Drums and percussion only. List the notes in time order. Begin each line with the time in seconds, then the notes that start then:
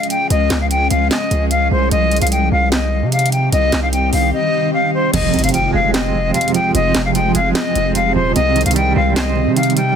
0.03 closed hi-hat
0.10 closed hi-hat
0.30 closed hi-hat
0.50 snare, clap, closed hi-hat
0.71 closed hi-hat
0.91 closed hi-hat
1.11 snare, clap, closed hi-hat
1.31 closed hi-hat
1.51 closed hi-hat
1.91 closed hi-hat
2.11 closed hi-hat
2.17 closed hi-hat
2.22 closed hi-hat
2.27 closed hi-hat
2.32 closed hi-hat
2.72 snare, clap, closed hi-hat
3.12 closed hi-hat
3.19 closed hi-hat
3.26 closed hi-hat
3.32 closed hi-hat
3.52 closed hi-hat
3.72 snare, clap, closed hi-hat
3.93 closed hi-hat
4.13 open hi-hat
5.14 closed hi-hat, crash
5.34 closed hi-hat
5.39 closed hi-hat
5.44 closed hi-hat
5.49 closed hi-hat
5.54 closed hi-hat
5.94 snare, clap, closed hi-hat
6.34 closed hi-hat
6.41 closed hi-hat
6.48 closed hi-hat
6.54 closed hi-hat
6.75 closed hi-hat
6.95 snare, clap, closed hi-hat
7.15 closed hi-hat
7.35 closed hi-hat
7.55 snare, clap, closed hi-hat
7.75 closed hi-hat
7.95 closed hi-hat
8.36 closed hi-hat
8.56 closed hi-hat
8.61 closed hi-hat
8.66 closed hi-hat
8.71 closed hi-hat
8.76 closed hi-hat
9.16 snare, clap, closed hi-hat
9.56 closed hi-hat
9.63 closed hi-hat
9.70 closed hi-hat
9.77 closed hi-hat